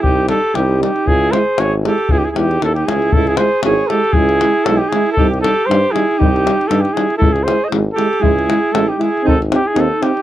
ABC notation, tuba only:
X:1
M:2/4
L:1/8
Q:"Swing 16ths" 1/4=117
K:none
V:1 name="Tuba" clef=bass
C,,2 C,,2 | ^C,,2 ^G,,,2 | ^C,, E,, ^D,, C,, | ^C,,2 ^G,,, z |
^C,,2 B,,, z | C,,2 G,, z | C,,2 G,, z | ^C,,2 ^G,,, z |
^C,,2 A,,, z | ^G,,,2 ^D,, z |]